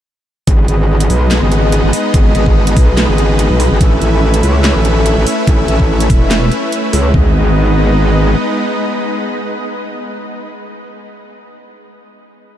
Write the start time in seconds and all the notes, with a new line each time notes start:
0.47 G#1 G#3 B3 D#4 B4 D#5, kick, closed hi-hat
0.68 G#1, closed hi-hat
1.00 closed hi-hat
1.10 B1, open hi-hat
1.31 snare, clap, closed hi-hat
1.42 G#1
1.52 closed hi-hat
1.72 closed hi-hat
1.84 G#1
1.93 open hi-hat
2.14 G#1, kick, closed hi-hat
2.35 G#1, closed hi-hat
2.46 kick
2.67 closed hi-hat
2.77 B1, kick, open hi-hat
2.97 snare, clap, closed hi-hat
3.09 G#1
3.18 closed hi-hat
3.39 closed hi-hat
3.50 B1
3.60 open hi-hat
3.71 G#1
3.81 A1 A3 C#4 E4 E5, kick, closed hi-hat
4.02 A1, closed hi-hat
4.34 closed hi-hat
4.43 C#2, open hi-hat
4.64 snare, clap, closed hi-hat
4.75 A1
4.85 closed hi-hat
5.06 closed hi-hat
5.17 A1
5.27 open hi-hat
5.47 A1, kick, closed hi-hat
5.68 A1, closed hi-hat
5.80 kick
6.00 closed hi-hat
6.10 E1, kick, open hi-hat
6.31 snare, clap, closed hi-hat
6.52 closed hi-hat
6.72 closed hi-hat
6.93 C#2, open hi-hat
7.14 G#1 G#3 B3 D#4 B4 D#5, kick, floor tom